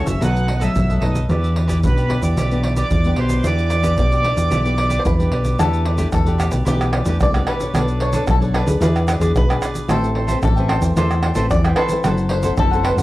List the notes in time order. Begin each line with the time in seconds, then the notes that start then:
Already playing: C#3 E3 A3 C#4
0.05 F#1 A4 C#5 E5, pandeiro, shaker, surdo
0.21 B1 B2 F#3 A3 D#4 A4 B4 D#5 F#5, pandeiro, shaker, surdo
0.36 pandeiro, shaker
0.46 D#4 A4 B4 D#5, pandeiro
0.57 D#4 A4 D#5 F#5
0.61 F#3 A3 B4 E5, pandeiro, shaker, surdo
0.75 B1 F#2, pandeiro, shaker, surdo
0.89 A4 B4 D#5, pandeiro, shaker
1.01 B1 F#3 A3 D#4 A4 B4 D#5, pandeiro
1.15 pandeiro, shaker, surdo
1.29 E2 E3 B3 D4 E4 G4 B4 D5, pandeiro, shaker, surdo
1.44 pandeiro, shaker
1.55 E4 G4 B4 D5, pandeiro
1.67 E4 G4 B4 D5, pandeiro, shaker, surdo
1.83 B1 B2 B3 D4 G4 B4, pandeiro, shaker, surdo
1.96 G4 B4 D5, pandeiro, shaker
2.08 B3 D4 E4 G4 B4 D5, pandeiro, surdo
2.21 E2 G4 B4 D5, pandeiro, shaker, surdo
2.36 B1 E3 E4 G4 B4 D5, pandeiro, shaker, surdo
2.51 B3 D4 G4, pandeiro, shaker
2.62 E4 G4 B4 D5, pandeiro
2.76 E4 G4 B4 D5, pandeiro, shaker, surdo
2.91 E2 B2, pandeiro, shaker, surdo
3.04 B3 D4 G4 B4 D5, pandeiro, shaker
3.16 B1 E4 G4 B4 C5 D5, pandeiro
3.29 pandeiro, shaker, surdo
3.44 E2 E3 B3 D4 E4 G4 B4 D5, pandeiro, shaker, surdo
3.58 pandeiro, shaker
3.70 E4 G4 B4 D5, pandeiro, shaker
3.83 B3 D4 E4 G4 B4 D5, pandeiro, shaker, surdo
3.97 B1 B2 B3 D4 G4, pandeiro, shaker, surdo
4.11 G4 B4 D5, pandeiro, shaker
4.23 B3 D4 E4 G4 B4 D5, pandeiro
4.37 E2 G4 B4, pandeiro, shaker, surdo
4.50 B1 E3 E4 G4 B4 D5, pandeiro, shaker, surdo
4.65 B3 D4 G4, pandeiro, shaker
4.77 E4 G4 B4 D5, pandeiro
4.89 E4 G4 B4 D5, pandeiro, shaker, surdo
4.99 C5
5.05 E2 B2 B4, pandeiro, shaker, surdo
5.19 B3 D4 G4 B4 D5, pandeiro, shaker
5.31 B1 E4 G4 B4 D5, pandeiro
5.45 pandeiro, shaker, surdo
5.59 E2 E3 A3 D4 E4 G4 A4 B4 D5, pandeiro, tamborim, shaker, surdo
5.73 pandeiro, shaker
5.85 E4 G4 B4 D5, pandeiro
5.98 A3 D4 E4 G4 B4 D5, pandeiro, shaker, surdo
6.12 E2 B2 A4, pandeiro, tamborim, shaker, surdo
6.26 A3 D4 G4 B4 D5, pandeiro, shaker
6.38 E4 G4 B4 D5, pandeiro, tamborim, shaker
6.51 B1 G4 B4 D5, pandeiro, shaker, surdo
6.65 B1 E3 A3 D4 E4 G4 B4 D5, pandeiro, shaker, surdo
6.81 pandeiro, tamborim, shaker
6.92 E4 G4 B4 D5, pandeiro, tamborim
7.06 E2 A3 D4 E4 G4 B4 D5, pandeiro, shaker, surdo
7.21 C2 B2 D5, pandeiro, tamborim, shaker, surdo
7.34 A3 D4 G4 B4 D5, pandeiro, tamborim, shaker
7.46 E4 G4 B4 D5, pandeiro, tamborim
7.60 D4 A4 C#5, pandeiro, shaker, surdo
7.74 B1 B3 D4 A4 B4 D5, pandeiro, tamborim, shaker, surdo
7.88 pandeiro, shaker
8.00 D4 A4 B4 C#5 D5, pandeiro
8.13 D4 A4 B4 C#5 D5, pandeiro, shaker, surdo
8.27 B1 F#3 A4, pandeiro, tamborim, shaker, surdo
8.40 D4 A4 B4 C#5 D5, pandeiro, shaker
8.44 A4
8.53 D4 A4 B4 D5, pandeiro, tamborim
8.66 D2 D4 G#4 A4 B4 D5, pandeiro, shaker, surdo
8.80 E2 E3 E4 G#4 B4 D5, pandeiro, shaker, surdo
8.96 pandeiro, tamborim, shaker
9.07 E4 G#4 B4 D5, pandeiro, tamborim, shaker
9.19 E2 D4 E4 G#4 B4 D5, pandeiro, shaker, surdo
9.34 B1 B2 B4, pandeiro, tamborim, shaker, surdo
9.49 D4 G#4 B4 D5, pandeiro, tamborim, shaker
9.62 E4 G#4 B4 D5, pandeiro, tamborim, shaker
9.75 pandeiro, shaker, surdo
9.88 A1 A3 C4 G4 A4 B4 C5 E5 G5, pandeiro, tamborim, shaker, surdo
10.04 pandeiro, shaker
10.15 A4 C5 E5 G5, pandeiro
10.27 C4 G4 A4 C5 E5 G5, pandeiro, shaker, surdo
10.31 B4
10.42 A1 E3 A4, pandeiro, tamborim, shaker, surdo
10.56 C4 G4 B4 C5 E5 G5, pandeiro, shaker
10.68 A4 C5 E5 G5, pandeiro, tamborim
10.81 E2 C5 E5 G5, pandeiro, shaker, surdo
10.96 E2 A3 C4 G4 A4 B4 C5 E5 G5, pandeiro, shaker, surdo
11.11 pandeiro, tamborim, shaker
11.23 A4 C5 E5 G5, pandeiro, tamborim
11.35 A1 C4 G4 A4 B4 C5 E5 G5, pandeiro, shaker, surdo
11.51 E2 E3 D5, pandeiro, tamborim, shaker, surdo
11.64 C4 G4 B4 C5 E5 G5, pandeiro, tamborim, shaker
11.76 A4 B4 C5 E5 G5, pandeiro, tamborim
11.89 C4 E4 A4, pandeiro, shaker, surdo
12.04 F#1 F#3 E4 A4 C5 F#5, pandeiro, tamborim, shaker, surdo
12.18 pandeiro, shaker
12.29 E4 A4 C5 F#5, pandeiro
12.43 C4 E4 A4 C5 F#5, pandeiro, shaker, surdo
12.57 F#1 F#3 A4, pandeiro, tamborim, shaker, surdo
12.71 C4 E4 A4 C5 F#5, pandeiro, shaker
12.83 E4 A4 B4 C5 F#5, pandeiro, tamborim
12.96 F#2 A4 C5 F#5, pandeiro, shaker, surdo